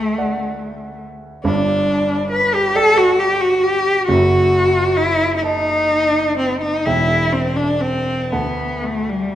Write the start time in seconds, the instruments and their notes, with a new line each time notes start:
Already playing: grand piano D2, cello A3
0.18 grand piano D5 F#5
1.44 grand piano G1 G2, cello D4
2.31 cello B4
2.55 cello G4
2.75 cello A4, grand piano D5 G5
2.97 cello F#4
3.19 cello G4
3.40 cello F#4
3.63 cello G4
4.07 grand piano F#1 F#2, cello F#4
4.97 cello E4
5.36 cello E4
5.42 cello D#4, grand piano D#5 A5
6.38 cello C4
6.61 cello D#4
6.85 grand piano E1 E2 E5 G5, cello E4
7.32 cello C4
7.56 cello D4
7.81 cello C4
8.32 grand piano D2 F#5 A5, cello B3
8.83 cello A3
9.09 cello G3